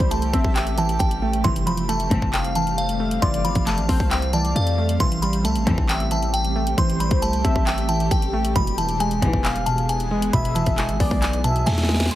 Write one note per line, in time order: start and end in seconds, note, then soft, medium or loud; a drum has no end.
0.00 0.32 C2 loud
0.00 0.77 E3 medium
0.00 1.00 G3 medium
0.00 8.52 G3 medium
0.00 4.96 A3 medium
0.00 8.52 C4 medium
0.00 1.41 G4 loud
0.00 0.29 C5 loud
0.00 kick loud
0.00 closed hi-hat medium
0.11 1.21 A3 medium
0.11 0.53 A5 medium
0.11 closed hi-hat medium
0.22 closed hi-hat medium
0.33 0.44 A1 loud
0.33 1.44 C4 medium
0.33 0.96 E5 medium
0.33 kick loud
0.33 closed hi-hat medium
0.44 0.98 A1 loud
0.44 kick loud
0.55 0.74 G5 medium
0.55 clap loud
0.55 closed hi-hat medium
0.67 closed hi-hat medium
0.78 1.43 E3 medium
0.78 0.97 A5 medium
0.78 closed hi-hat medium
0.89 closed hi-hat medium
0.99 1.43 A1 loud
0.99 1.41 G5 medium
0.99 kick loud
0.99 closed hi-hat medium
1.11 closed hi-hat medium
1.22 1.44 A3 medium
1.33 closed hi-hat medium
1.44 2.08 F1 loud
1.44 1.54 C2 medium
1.44 1.54 A2 loud
1.44 1.54 E3 medium
1.44 2.55 E3 loud
1.44 4.97 F5 loud
1.44 1.63 C6 loud
1.44 kick loud
1.44 closed hi-hat medium
1.56 closed hi-hat medium
1.67 2.78 F3 medium
1.67 1.86 B5 medium
1.67 closed hi-hat medium
1.77 closed hi-hat medium
1.89 2.99 A3 medium
1.89 2.31 A5 medium
1.89 closed hi-hat medium
2.00 closed hi-hat medium
2.11 2.22 F1 loud
2.11 2.43 C2 loud
2.11 2.43 A2 loud
2.11 2.43 E3 loud
2.11 3.22 C4 medium
2.11 kick loud
2.11 closed hi-hat medium
2.22 3.18 F1 loud
2.22 kick loud
2.33 2.75 F5 medium
2.33 2.52 G5 medium
2.33 clap loud
2.33 closed hi-hat medium
2.45 closed hi-hat medium
2.55 3.21 E3 medium
2.55 2.75 A5 medium
2.55 closed hi-hat medium
2.67 closed hi-hat medium
2.78 3.20 F5 medium
2.78 closed hi-hat medium
2.89 closed hi-hat medium
3.00 3.66 A3 medium
3.11 closed hi-hat medium
3.22 3.46 F1 loud
3.22 4.32 E3 medium
3.22 3.85 D5 loud
3.22 3.41 C6 loud
3.22 kick loud
3.22 closed hi-hat medium
3.34 closed hi-hat medium
3.45 3.55 G1 loud
3.45 4.56 F3 medium
3.45 3.63 B5 medium
3.45 closed hi-hat medium
3.55 3.79 F1 loud
3.55 kick loud
3.55 closed hi-hat medium
3.67 4.77 A3 medium
3.67 4.09 A5 medium
3.67 clap loud
3.67 closed hi-hat medium
3.78 3.88 A1 loud
3.78 closed hi-hat medium
3.89 3.99 A1 loud
3.89 5.00 C4 medium
3.89 4.31 C5 medium
3.89 kick loud
3.89 open hi-hat medium
4.00 4.53 C2 loud
4.00 kick loud
4.11 4.30 G5 medium
4.11 clap loud
4.11 closed hi-hat medium
4.22 closed hi-hat medium
4.33 4.99 E3 medium
4.33 4.96 D5 medium
4.33 4.52 A5 medium
4.33 closed hi-hat medium
4.45 closed hi-hat medium
4.56 4.98 F2 loud
4.56 4.98 F5 medium
4.56 closed hi-hat medium
4.67 closed hi-hat medium
4.78 5.00 A3 medium
4.89 closed hi-hat medium
5.00 5.46 A1 loud
5.00 5.10 C2 medium
5.00 5.10 A2 medium
5.00 5.10 E3 loud
5.00 6.10 E3 loud
5.00 8.52 A3 medium
5.00 8.52 G4 medium
5.00 5.19 C6 loud
5.00 kick loud
5.00 closed hi-hat medium
5.12 closed hi-hat medium
5.22 6.34 G3 loud
5.22 5.41 B5 medium
5.22 closed hi-hat medium
5.33 closed hi-hat medium
5.44 5.57 C2 loud
5.44 6.54 A3 medium
5.44 5.87 A5 medium
5.44 closed hi-hat medium
5.56 5.66 A1 loud
5.56 closed hi-hat medium
5.67 5.98 C2 loud
5.67 5.77 E2 loud
5.67 5.98 A2 loud
5.67 5.98 E3 loud
5.67 6.78 C4 medium
5.67 kick loud
5.67 closed hi-hat medium
5.78 6.74 A1 loud
5.78 kick loud
5.89 6.31 E5 medium
5.89 6.08 G5 medium
5.89 clap loud
5.89 closed hi-hat medium
6.00 closed hi-hat medium
6.11 6.77 E3 medium
6.11 6.30 A5 medium
6.11 closed hi-hat medium
6.23 closed hi-hat medium
6.34 6.75 G5 medium
6.34 closed hi-hat medium
6.45 closed hi-hat medium
6.56 7.21 A3 medium
6.67 closed hi-hat medium
6.78 7.10 A1 loud
6.78 7.88 E3 medium
6.78 7.40 C5 loud
6.78 6.97 C6 loud
6.78 kick loud
6.78 closed hi-hat medium
6.90 closed hi-hat medium
7.00 8.11 G3 medium
7.00 7.19 B5 medium
7.00 closed hi-hat medium
7.11 7.43 C2 loud
7.11 kick loud
7.11 closed hi-hat medium
7.22 8.32 A3 medium
7.22 7.64 A5 medium
7.22 closed hi-hat medium
7.33 closed hi-hat medium
7.44 7.55 A1 loud
7.44 8.56 C4 medium
7.44 8.07 E5 medium
7.44 kick loud
7.44 closed hi-hat medium
7.56 8.09 A1 loud
7.56 kick loud
7.67 7.86 G5 medium
7.67 clap loud
7.67 closed hi-hat medium
7.78 closed hi-hat medium
7.89 8.55 E3 medium
7.89 8.08 A5 medium
7.89 closed hi-hat medium
8.00 closed hi-hat medium
8.11 8.54 A1 loud
8.11 8.53 G5 medium
8.11 kick loud
8.11 closed hi-hat medium
8.22 closed hi-hat medium
8.33 8.56 A3 medium
8.45 closed hi-hat medium
8.56 9.20 E1 loud
8.56 8.65 B1 medium
8.56 8.65 G#2 medium
8.56 9.66 B2 medium
8.56 8.65 E3 loud
8.56 12.08 E3 medium
8.56 12.08 G#3 medium
8.56 12.08 B3 medium
8.56 12.08 G#4 loud
8.56 8.75 B5 loud
8.56 kick loud
8.56 closed hi-hat medium
8.67 closed hi-hat medium
8.78 9.89 E3 medium
8.78 8.97 A5 medium
8.78 closed hi-hat medium
8.89 closed hi-hat medium
9.00 10.10 G#3 medium
9.00 9.42 G#5 medium
9.00 closed hi-hat medium
9.11 closed hi-hat medium
9.22 9.33 E1 loud
9.22 9.54 B1 medium
9.22 9.54 G#2 loud
9.22 9.54 E3 loud
9.22 10.33 B3 medium
9.22 kick loud
9.22 closed hi-hat medium
9.33 10.29 E1 loud
9.33 kick loud
9.44 9.86 F5 medium
9.44 9.63 G#5 medium
9.44 clap loud
9.44 closed hi-hat medium
9.56 closed hi-hat medium
9.66 10.32 B2 medium
9.66 9.85 A5 medium
9.66 closed hi-hat medium
9.78 closed hi-hat medium
9.89 10.31 G#5 medium
9.89 closed hi-hat medium
10.00 closed hi-hat medium
10.11 10.77 G#3 medium
10.22 closed hi-hat medium
10.33 10.57 E1 loud
10.33 11.43 B2 loud
10.33 10.96 E5 loud
10.33 10.52 B5 loud
10.33 kick loud
10.33 closed hi-hat medium
10.45 closed hi-hat medium
10.55 10.66 F1 loud
10.55 11.67 E3 medium
10.55 10.74 A5 medium
10.55 closed hi-hat medium
10.66 10.90 E1 loud
10.66 kick loud
10.66 closed hi-hat medium
10.78 11.88 G#3 medium
10.78 11.20 G#5 medium
10.78 clap medium
10.78 closed hi-hat medium
10.89 11.00 G#1 loud
10.89 closed hi-hat medium
11.00 11.11 G#1 loud
11.00 12.11 B3 medium
11.00 11.42 D5 medium
11.00 kick loud
11.00 open hi-hat medium
11.11 11.64 B1 loud
11.11 kick loud
11.22 11.41 G#5 medium
11.22 clap loud
11.22 closed hi-hat medium
11.33 closed hi-hat medium
11.44 12.11 B2 medium
11.44 12.07 E5 medium
11.44 11.63 A5 medium
11.44 closed hi-hat medium
11.56 closed hi-hat medium
11.66 12.09 E2 loud
11.66 12.08 G#5 medium
11.66 snare medium
11.66 closed hi-hat medium
11.72 snare medium
11.78 snare medium
11.78 closed hi-hat medium
11.83 snare medium
11.89 12.11 G#3 medium
11.89 snare medium
11.94 snare medium
12.00 snare loud
12.00 closed hi-hat medium
12.06 snare loud
12.11 12.15 C6 loud
12.11 closed hi-hat medium